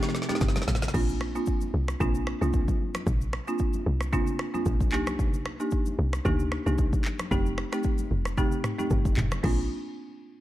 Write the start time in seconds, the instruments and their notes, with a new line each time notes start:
Already playing: analog synth pad C3 F3 A3 D#4
0.02 snare, shaker
0.09 snare
0.15 snare, shaker
0.22 snare
0.29 marimba A3 C4 D#4 G4, snare, high conga, shaker
0.35 snare
0.41 log drum bass G1, kick, snare, low conga, shaker
0.48 snare
0.56 snare, high conga, shaker
0.62 snare
0.68 log drum bass A1, snare, low conga
0.75 snare
0.82 snare, high conga, shaker
0.88 snare
0.94 log drum bass A#1, marimba A#3 C4 D4 F4, kick, crash, low conga, shaker
1.09 shaker
1.21 finger snap, cross-stick
1.35 marimba A#3 C4 D4 F4, shaker
1.46 kick, shaker
1.61 high conga, shaker
1.74 log drum bass C2
1.88 finger snap, cross-stick, shaker
2.00 log drum bass A#1, marimba A#3 C4 D4 F4, kick, low conga, shaker
2.15 shaker
2.27 finger snap, cross-stick
2.41 log drum bass C2, marimba A#3 C4 D4 F4, high conga, shaker
2.53 kick, low conga, shaker
2.68 kick, high conga, shaker
2.94 finger snap, cross-stick, high conga, shaker
3.07 log drum bass A#1, kick, low conga, shaker
3.21 shaker
3.33 finger snap, cross-stick
3.47 marimba A#3 C4 D4 F4, shaker
3.59 kick, shaker
3.73 high conga, shaker
3.86 log drum bass C2
4.01 finger snap, cross-stick, shaker
4.13 marimba A#3 C4 D4 F4, kick, low conga, shaker
4.27 shaker
4.39 finger snap, cross-stick
4.54 marimba A#3 C4 D4 F4, high conga, shaker
4.66 log drum bass A#1, kick, low conga, shaker
4.80 kick, high conga, shaker
4.92 log drum bass C2, marimba A#3 D4 D#4 G4, clap
5.07 finger snap, cross-stick, high conga, shaker
5.19 kick, low conga, shaker
5.34 shaker
5.46 finger snap, cross-stick
5.60 marimba A#3 D4 D#4 G4, shaker
5.71 kick, shaker
5.86 high conga, shaker
5.99 log drum bass C2
6.13 finger snap, cross-stick, shaker
6.25 log drum bass D2, marimba A#3 D4 D#4 G4, kick, low conga, shaker
6.39 shaker
6.52 finger snap, cross-stick
6.66 log drum bass C2, marimba A#3 D4 D#4 G4, high conga, shaker
6.78 kick, low conga, shaker
6.93 kick, high conga, shaker
7.05 clap
7.19 finger snap, cross-stick, high conga, shaker
7.31 log drum bass F1, marimba A3 C4 D#4 G4, kick, low conga, shaker
7.46 high conga, shaker
7.58 finger snap, cross-stick
7.72 marimba A3 C4 D#4 G4, finger snap, cross-stick, shaker
7.83 kick, shaker
7.98 high conga, shaker
8.11 log drum bass F1
8.25 finger snap, cross-stick, shaker
8.37 marimba A3 C4 D#4 G4, kick, low conga, shaker
8.52 shaker
8.64 finger snap, cross-stick, mid tom, shaker
8.78 marimba A3 C4 D#4 G4, high conga, shaker
8.90 log drum bass G1, kick, low conga, shaker
9.05 kick, high conga, shaker
9.17 log drum bass F1, clap, mid tom, low conga
9.32 finger snap, cross-stick, high conga, shaker
9.43 log drum bass A#1, marimba A#3 C4 D4 F4, kick, crash, high conga